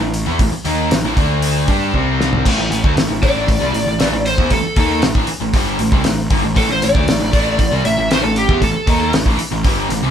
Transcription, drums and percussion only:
0.14 open hi-hat
0.39 kick, open hi-hat
0.65 open hi-hat
0.91 snare, open hi-hat
1.17 kick, open hi-hat
1.42 open hi-hat
1.68 kick, open hi-hat
1.94 kick
2.20 snare
2.33 floor tom
2.46 kick, crash
2.72 open hi-hat
2.84 kick
2.97 snare, open hi-hat
3.23 kick, open hi-hat
3.48 kick, open hi-hat
3.74 open hi-hat
4.00 snare, open hi-hat
4.26 open hi-hat
4.38 kick
4.51 kick, open hi-hat
4.76 kick, open hi-hat
5.02 snare, open hi-hat
5.15 kick
5.27 open hi-hat
5.54 kick, open hi-hat
5.79 open hi-hat
5.92 kick
6.04 snare, open hi-hat
6.30 kick, open hi-hat
6.56 kick, open hi-hat
6.82 open hi-hat
6.95 kick
7.08 snare, open hi-hat
7.33 kick, open hi-hat
7.59 kick, open hi-hat
7.85 open hi-hat
8.11 snare, open hi-hat
8.36 open hi-hat
8.49 kick
8.62 kick, open hi-hat
8.87 kick, open hi-hat
9.13 snare, open hi-hat
9.26 kick
9.39 open hi-hat
9.64 kick, open hi-hat
9.90 open hi-hat

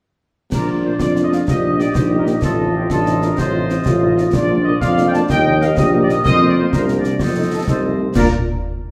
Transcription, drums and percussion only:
0.52 concert bass drum, snare, crash
0.99 concert bass drum, snare
1.16 snare
1.32 snare
1.48 concert bass drum, snare
1.80 snare
1.95 concert bass drum, snare
2.27 snare
2.42 concert bass drum, snare
2.90 concert bass drum, snare
3.06 snare
3.22 snare
3.38 concert bass drum, snare
3.70 snare
3.86 concert bass drum, snare
4.18 snare
4.33 concert bass drum, snare, crash
4.82 concert bass drum, snare
4.98 snare
5.14 snare
5.30 concert bass drum, snare
5.61 snare
5.77 concert bass drum, snare
6.09 snare
6.25 concert bass drum, snare
6.73 concert bass drum, snare
6.88 snare
7.04 snare
7.19 concert bass drum, snare
7.68 concert bass drum, snare
8.15 concert bass drum, snare, crash

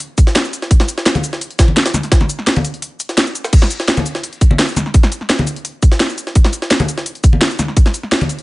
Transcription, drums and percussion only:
0.00 closed hi-hat
0.18 kick, closed hi-hat, cabasa
0.27 snare
0.35 snare, closed hi-hat
0.45 closed hi-hat, cabasa
0.53 closed hi-hat, cabasa
0.62 snare
0.71 kick, closed hi-hat
0.80 snare
0.88 closed hi-hat, cabasa
0.98 snare
1.06 snare, closed hi-hat
1.15 closed hi-hat, high conga
1.24 closed hi-hat, cabasa
1.33 snare
1.41 closed hi-hat
1.51 closed hi-hat
1.59 kick, snare, closed hi-hat, cabasa
1.68 high conga
1.76 snare, closed hi-hat
1.86 snare, closed hi-hat, cabasa
1.94 snare, closed hi-hat, high conga, cabasa
2.03 snare, closed hi-hat
2.12 kick, snare, closed hi-hat
2.21 snare, high conga
2.29 closed hi-hat, cabasa
2.39 snare
2.47 snare, closed hi-hat
2.56 closed hi-hat, high conga
2.65 closed hi-hat, cabasa
2.74 closed hi-hat
2.82 closed hi-hat
3.00 closed hi-hat, cabasa
3.09 snare, closed hi-hat
3.18 snare, closed hi-hat
3.27 closed hi-hat, cabasa
3.35 closed hi-hat, cabasa
3.44 snare, cabasa
3.53 kick, closed hi-hat, crash
3.62 snare
3.70 closed hi-hat, cabasa
3.80 snare
3.88 snare, closed hi-hat
3.97 closed hi-hat, high conga
4.06 closed hi-hat, cabasa
4.15 snare
4.23 closed hi-hat
4.33 closed hi-hat
4.41 kick, closed hi-hat, cabasa
4.51 high conga
4.59 snare, closed hi-hat, open hi-hat
4.68 closed hi-hat, cabasa
4.76 snare, closed hi-hat, high conga, cabasa
4.86 snare
4.94 kick, closed hi-hat
5.03 snare
5.12 closed hi-hat, cabasa
5.21 snare
5.30 snare, closed hi-hat
5.39 closed hi-hat, high conga
5.47 closed hi-hat, cabasa
5.56 closed hi-hat
5.65 closed hi-hat
5.82 kick, closed hi-hat, cabasa
5.92 snare
6.00 snare, closed hi-hat
6.10 closed hi-hat, cabasa
6.18 closed hi-hat, cabasa
6.27 snare
6.35 kick, closed hi-hat
6.45 snare
6.53 closed hi-hat, cabasa
6.62 snare
6.71 snare, closed hi-hat
6.80 closed hi-hat, high conga
6.88 closed hi-hat, cabasa
6.98 snare
7.06 closed hi-hat
7.15 closed hi-hat
7.24 kick, closed hi-hat, cabasa
7.33 high conga
7.41 snare, closed hi-hat, open hi-hat
7.51 closed hi-hat, cabasa
7.59 snare, closed hi-hat, high conga, cabasa
7.68 snare
7.77 kick, closed hi-hat
7.86 snare
7.94 closed hi-hat, cabasa
8.03 snare
8.12 snare, closed hi-hat
8.21 closed hi-hat, high conga
8.29 closed hi-hat, cabasa
8.39 closed hi-hat

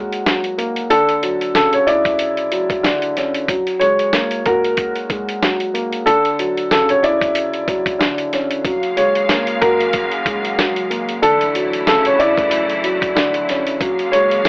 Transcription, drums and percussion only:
0.12 closed hi-hat
0.26 snare, closed hi-hat
0.44 closed hi-hat
0.59 closed hi-hat
0.76 closed hi-hat
0.90 closed hi-hat
1.09 closed hi-hat
1.23 closed hi-hat
1.41 closed hi-hat
1.55 snare, closed hi-hat
1.73 closed hi-hat
1.88 closed hi-hat
2.05 kick, closed hi-hat
2.19 closed hi-hat
2.37 closed hi-hat
2.52 closed hi-hat
2.70 kick, closed hi-hat
2.84 snare, closed hi-hat
3.02 closed hi-hat
3.17 snare, closed hi-hat
3.34 closed hi-hat
3.48 kick, closed hi-hat
3.67 closed hi-hat
3.81 closed hi-hat
3.99 closed hi-hat
4.13 snare, closed hi-hat
4.31 closed hi-hat
4.46 kick, closed hi-hat
4.64 closed hi-hat
4.77 kick, closed hi-hat
4.95 closed hi-hat
5.10 kick, closed hi-hat
5.29 closed hi-hat
5.43 snare, closed hi-hat
5.60 closed hi-hat
5.75 closed hi-hat
5.93 closed hi-hat
6.07 closed hi-hat
6.25 closed hi-hat
6.39 closed hi-hat
6.57 closed hi-hat
6.71 snare, closed hi-hat
6.89 closed hi-hat
7.04 closed hi-hat
7.21 kick, closed hi-hat
7.35 closed hi-hat
7.54 closed hi-hat
7.68 kick, closed hi-hat
7.86 kick, closed hi-hat
8.01 snare, closed hi-hat
8.18 closed hi-hat
8.33 snare, closed hi-hat
8.51 closed hi-hat
8.65 kick, closed hi-hat
8.83 closed hi-hat
8.97 closed hi-hat
9.15 closed hi-hat
9.29 snare, closed hi-hat
9.47 closed hi-hat
9.62 kick, closed hi-hat
9.81 closed hi-hat
9.93 kick, closed hi-hat
10.12 closed hi-hat
10.26 kick, closed hi-hat
10.45 closed hi-hat
10.59 snare, closed hi-hat
10.76 closed hi-hat
10.91 closed hi-hat
11.09 closed hi-hat
11.23 closed hi-hat
11.41 closed hi-hat
11.55 closed hi-hat
11.73 closed hi-hat
11.87 snare, closed hi-hat
12.05 closed hi-hat
12.20 closed hi-hat
12.37 kick, closed hi-hat
12.51 closed hi-hat
12.70 closed hi-hat
12.84 closed hi-hat
13.02 kick, closed hi-hat
13.17 snare, closed hi-hat
13.34 closed hi-hat
13.49 snare, closed hi-hat
13.67 closed hi-hat
13.81 kick, closed hi-hat
13.99 closed hi-hat
14.13 closed hi-hat
14.31 closed hi-hat
14.45 snare

